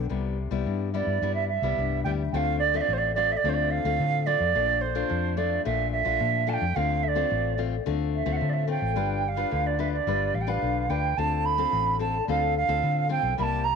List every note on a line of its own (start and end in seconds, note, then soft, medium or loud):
0.09 0.46 C2 medium
0.09 0.63 C3 medium
0.09 0.36 G3 soft
0.09 0.36 B3 medium
0.09 0.37 E4 medium
0.51 0.63 C2 medium
0.51 0.89 G3 medium
0.51 0.89 B3 medium
0.51 0.89 E4 medium
0.66 1.19 G2 soft
0.66 1.02 G2 medium
0.93 1.17 G3 medium
0.93 1.17 B3 medium
0.93 1.18 E4 medium
0.93 1.32 D5 medium
0.93 0.97 E5 medium
1.07 1.19 G2 medium
1.22 1.57 G2 medium
1.22 1.75 C3 medium
1.22 1.48 G3 medium
1.22 1.48 B3 medium
1.22 1.49 E4 medium
1.34 1.47 E5 medium
1.48 2.00 E5 medium
1.62 1.75 C2 medium
1.62 2.01 G3 medium
1.62 2.01 B3 medium
1.62 2.01 E4 medium
1.78 2.02 C2 medium
1.78 2.31 G2 medium
2.04 2.30 D2 medium
2.04 2.22 G3 soft
2.04 2.22 B3 soft
2.04 2.22 E4 medium
2.04 2.10 G5 medium
2.32 2.80 D2 medium
2.32 2.86 D3 medium
2.32 2.59 A3 medium
2.32 2.60 C4 medium
2.32 2.60 F4 medium
2.32 2.37 G5 medium
2.36 2.58 F5 loud
2.59 2.77 D5 loud
2.74 3.11 A3 medium
2.74 3.12 C4 medium
2.74 3.12 F4 medium
2.74 2.82 E5 medium
2.81 2.94 D5 loud
2.88 3.36 A1 medium
2.88 3.42 A2 medium
2.93 2.99 C5 medium
2.98 3.11 D5 loud
3.15 3.32 A3 medium
3.15 3.33 C4 medium
3.15 3.33 F4 medium
3.15 3.33 D5 loud
3.32 3.38 E5 medium
3.37 3.50 D5 loud
3.44 3.79 D2 medium
3.44 3.97 D3 medium
3.44 3.81 A3 medium
3.44 3.81 C4 medium
3.44 3.82 F4 medium
3.49 3.55 C5 medium
3.54 3.72 D5 loud
3.71 4.28 F5 loud
3.85 3.97 D2 medium
3.85 4.22 A3 medium
3.85 4.23 C4 medium
3.85 4.23 F4 medium
4.00 4.52 A2 medium
4.00 4.35 D3 loud
4.26 4.43 A3 medium
4.26 4.43 C4 medium
4.26 4.43 F4 medium
4.26 4.83 D5 loud
4.40 4.52 F2 medium
4.55 5.02 A#1 medium
4.55 5.08 A#2 medium
4.55 4.81 A3 medium
4.55 4.81 D4 medium
4.55 4.81 F4 medium
4.81 5.39 C5 medium
4.95 5.33 A3 medium
4.95 5.33 D4 medium
4.95 5.33 F4 medium
5.09 5.58 F2 medium
5.09 5.62 F3 medium
5.37 5.61 A3 medium
5.37 5.61 D4 medium
5.37 5.61 F4 medium
5.37 5.64 D5 medium
5.65 6.01 A#1 medium
5.65 6.18 A#2 medium
5.65 6.02 A3 medium
5.65 6.03 D4 medium
5.65 6.03 F4 medium
5.65 5.91 E5 medium
5.92 6.50 E5 loud
6.05 6.18 A#1 medium
6.05 6.43 A3 medium
6.05 6.43 D4 medium
6.05 6.43 F4 medium
6.20 6.56 A#2 medium
6.20 6.73 F3 medium
6.47 6.64 A3 medium
6.47 6.64 D4 medium
6.47 6.64 F4 medium
6.47 6.54 A5 medium
6.53 6.77 G5 loud
6.62 6.74 F2 medium
6.76 7.23 D2 medium
6.76 7.28 D3 medium
6.76 7.02 A3 medium
6.76 7.02 C4 medium
6.76 7.02 F4 medium
6.76 7.05 F5 loud
7.03 7.09 E5 medium
7.08 7.59 D5 medium
7.15 7.53 A3 medium
7.15 7.54 C4 medium
7.15 7.54 F4 medium
7.31 7.78 A1 medium
7.31 7.83 A2 medium
7.58 7.75 A3 medium
7.58 7.75 C4 medium
7.58 7.75 F4 medium
7.86 8.22 D2 medium
7.86 8.39 D3 medium
7.86 8.23 A3 medium
7.86 8.23 C4 medium
7.86 8.24 F4 medium
8.15 8.33 E5 medium
8.26 8.39 D2 medium
8.26 8.64 A3 medium
8.26 8.64 C4 medium
8.26 8.64 F4 medium
8.32 8.50 E5 medium
8.32 8.37 F#5 medium
8.41 8.94 A2 medium
8.41 8.77 D3 medium
8.49 8.54 D5 medium
8.49 8.66 E5 medium
8.67 8.92 A3 medium
8.67 8.92 C4 medium
8.67 8.92 F4 medium
8.67 9.24 G5 medium
8.82 8.94 A1 medium
8.96 9.43 G1 medium
8.96 9.49 G3 medium
8.96 9.22 D4 medium
8.96 9.22 F4 medium
8.96 9.23 B4 medium
9.24 9.29 G5 medium
9.28 9.68 F5 medium
9.37 9.74 D4 medium
9.37 9.75 F4 medium
9.37 9.75 B4 medium
9.51 9.99 D2 medium
9.51 10.04 D3 medium
9.67 9.81 D5 medium
9.79 9.95 D4 medium
9.79 9.96 F4 medium
9.79 9.96 B4 medium
9.79 9.91 E5 medium
9.92 10.36 D5 medium
10.07 10.30 G1 medium
10.07 10.60 G3 medium
10.07 10.33 D4 medium
10.07 10.33 F4 medium
10.07 10.34 B4 medium
10.34 10.59 A1 medium
10.34 10.43 F5 medium
10.41 10.51 G5 medium
10.47 10.85 D4 medium
10.47 10.85 F4 medium
10.47 10.85 B4 medium
10.47 10.91 F5 medium
10.62 10.87 B1 medium
10.62 11.15 D3 medium
10.89 11.14 D2 medium
10.89 11.13 D4 medium
10.89 11.13 F4 medium
10.89 11.13 B4 medium
10.89 11.19 G5 medium
11.17 11.64 D2 medium
11.17 11.70 D3 medium
11.17 11.55 C4 medium
11.17 11.55 F4 medium
11.17 11.55 A4 medium
11.17 11.47 A5 loud
11.45 12.00 B5 loud
11.58 11.95 C4 medium
11.58 11.96 F4 medium
11.58 11.96 A4 medium
11.72 12.20 A1 medium
11.72 12.25 A2 medium
11.99 12.16 C4 medium
11.99 12.16 F4 medium
11.99 12.17 A4 medium
11.99 12.26 A5 medium
12.28 12.63 D2 medium
12.28 12.80 D3 medium
12.28 12.54 C4 medium
12.28 12.54 F4 medium
12.28 12.54 A4 medium
12.28 12.54 F5 medium
12.57 13.08 F5 loud
12.68 12.81 D2 medium
12.68 13.06 C4 medium
12.68 13.06 F4 medium
12.68 13.06 A4 medium
12.83 13.35 A2 medium
12.83 13.18 D3 medium
13.09 13.33 C4 medium
13.09 13.33 F4 medium
13.09 13.34 A4 medium
13.09 13.37 G5 medium
13.23 13.35 B1 medium
13.38 13.75 C2 medium
13.38 13.75 C3 medium
13.38 13.64 G3 medium
13.38 13.64 A#3 medium
13.38 13.64 E4 medium
13.38 13.43 B5 loud
13.42 13.66 A5 loud
13.64 13.75 A#5 loud